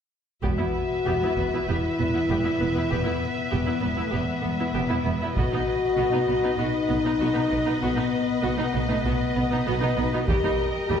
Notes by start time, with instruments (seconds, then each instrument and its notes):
0.42 double bass section E1, cello section E2, viola section B3 G4, french horn section F#4, violin section B4 E5, taiko
0.58 cello section E2, viola section B3 E4
1.06 double bass section E1, cello section E2, viola section B3 G4
1.22 cello section E2, viola section B3 E4
1.37 double bass section E1, cello section E2, viola section B3, taiko
1.53 cello section E2, viola section B3 E4
1.68 double bass section E1, cello section E2, viola section B3 G4, french horn section E4
1.99 double bass section E1, cello section E2, viola section B3
2.14 cello section E2, viola section B3 E4
2.29 double bass section E1, cello section E2, viola section B3 G4
2.44 cello section E2, viola section B3 E4
2.60 double bass section E1, cello section E2, viola section B3
2.75 cello section E2, viola section B3 E4
2.90 double bass section E1, cello section E2, viola section B3 G4, french horn section B3
3.04 cello section E2, viola section B3 E4
3.51 double bass section E1, cello section E2, viola section B3 G4, french horn section B3
3.66 cello section E2, viola section B3 E4
3.81 double bass section E1, cello section E2, viola section B3
3.97 cello section E2, french horn section A3, viola section B3 E4
4.11 double bass section E1, cello section E2, viola section B3 G4, french horn section B3
4.42 double bass section E1, cello section E2, viola section B3
4.59 cello section E2, viola section B3 E4
4.73 double bass section E1, cello section E2, viola section B3 G4
4.89 cello section E2, viola section B3 E4
5.05 double bass section E1, cello section E2, viola section B3
5.21 cello section E2, viola section B3 E4
5.35 double bass section B1, cello section B2, viola section B3 F#4, french horn section F#4, violin section B4 D#5, taiko
5.51 cello section B2, viola section B3 D#4
5.97 double bass section B1, cello section B2, viola section B3 F#4
6.12 cello section B2, viola section B3 D#4
6.27 double bass section B1, cello section B2, viola section B3
6.44 cello section B2, viola section B3 D#4
6.58 double bass section B1, cello section B2, viola section B3 F#4, french horn section D#4
6.89 double bass section B1, cello section B2, viola section B3
7.04 cello section B2, viola section B3 D#4
7.20 double bass section B1, cello section B2, viola section B3 F#4
7.35 cello section B2, viola section B3 D#4
7.50 double bass section B1, cello section B2, viola section B3
7.66 cello section B2, viola section B3 D#4
7.81 double bass section B1, cello section B2, french horn section B3, viola section B3 F#4
7.96 cello section B2, viola section B3 D#4
8.42 double bass section B1, cello section B2, viola section B3 F#4, french horn section B3
8.58 cello section B2, viola section B3 D#4
8.73 double bass section B1, cello section B2, viola section B3
8.88 cello section B2, french horn section A3, viola section B3 D#4
9.02 double bass section B1, cello section B2, french horn section B3, viola section B3 F#4
9.36 double bass section B1, cello section B2, viola section B3
9.51 cello section B2, viola section B3 D#4
9.67 double bass section B1, cello section B2, viola section B3 F#4
9.82 cello section B2, viola section B3 D#4
9.97 double bass section B1, cello section B2, viola section B3, french horn section D#4
10.13 cello section B2, viola section B3 D#4, french horn section F#4
10.27 cello section D#2, double bass section D#2, viola section G3 G4, french horn section G4, violin section A#4 D#5, taiko
10.44 cello section D#2, viola section G3 D#4
10.87 cello section D#2, double bass section D#2, viola section G3 G4, french horn section G4